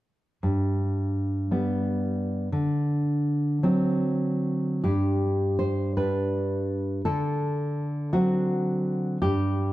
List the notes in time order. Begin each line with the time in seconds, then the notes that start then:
0.43 G2
1.51 G3 B3
2.52 D3
3.63 F#3 C4
4.84 G2 G4
5.59 C5
5.97 G3 D4 B4
7.05 D3 A4
8.13 F#3 C4 F#4
9.22 G2 G4